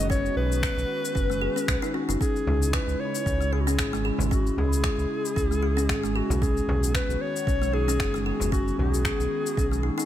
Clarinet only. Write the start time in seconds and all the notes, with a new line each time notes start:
0.10 C#5
0.37 B4
1.94 F#4
2.21 G#4
2.74 B4
3.00 C#5
3.53 G#4
3.61 F#4
3.68 G#4
4.32 F#4
4.58 G#4
6.16 F#4
6.42 G#4
6.95 B4
7.21 C#5
7.73 G#4
8.26 G#4
8.52 F#4
8.79 G#4